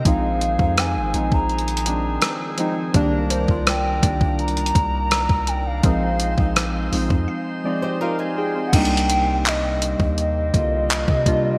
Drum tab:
CC |------------------------------------------------------------------------------------------------|------------------------------------------------------------------------------------------------|------------------------------------------------------------------------------------------------|x-----------------------------------------------------------------------------------------------|
HH |x-----------x-----------x-----------x-----------x--x--x--x--x-----------x-----------x-----------|x-----------x-----------x-----------x-----------x--x--x--x--x-----------x-----------x-----------|x-----------x-----------x-----------o-----------------------------------------------------------|x---x---x---x-----------x-----------x-----------x-----------x-----------x-----------x-----------|
CP |------------------------------------------------------------------------------------------------|------------------------------------------------------------------------------------------------|------------------------------------------------------------------------------------------------|------------------------x-----------------------------------------------x-----------------------|
SD |------------------------r-----------------------------------------------r-----------------------|------------------------r-----------------------------------------------r-----------------------|------------------------r-----------------------------------------------------------------------|------------------------------------------------------------------------------------------------|
BD |o-----------------o-----------------------o-----------------------------------------------------|o-----------------o-----------------o-----o-----------------o-----------------o-----------------|o-----------------o-----------------------o-----------------------------------------------------|o-----------------------------------------o-----------------o-----------------o-----o-----------|